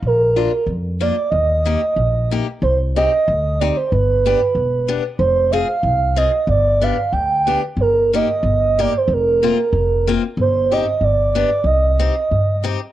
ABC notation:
X:1
M:2/4
L:1/16
Q:1/4=93
K:Eb
V:1 name="Soft synth lead"
B4 z2 d2 | e6 z2 | [K:Cm] c2 e4 d c | =B6 z2 |
c2 f4 e2 | d2 f2 g3 z | B2 e4 d c | B6 z2 |
c2 e2 d2 d2 | e6 z2 |]
V:2 name="Steel-string acoustic guitar"
z2 [B,DF]2 z2 [B,DF]2 | z2 [B,EG]2 z2 [B,EG]2 | [K:Cm] z2 [CEG]2 z2 [CEG]2 | z2 [=B,DG]2 z2 [B,DG]2 |
z2 [CFA]2 z2 [CFA]2 | z2 [=B,DG]2 z2 [B,DG]2 | z2 [B,EG]2 z2 [B,EG]2 | z2 [B,CF]2 z2 [B,CF]2 |
z2 [CEG]2 z2 [=B,DG]2 | z2 [CEG]2 z2 [CEG]2 |]
V:3 name="Upright bass" clef=bass
B,,,4 F,,4 | E,,4 B,,,4 | [K:Cm] C,,4 D,,4 | G,,,4 =E,,,4 |
F,,,4 C,,4 | G,,,4 D,,4 | G,,,4 G,,,4 | F,,,4 F,,,4 |
G,,,4 G,,,4 | C,,4 G,,4 |]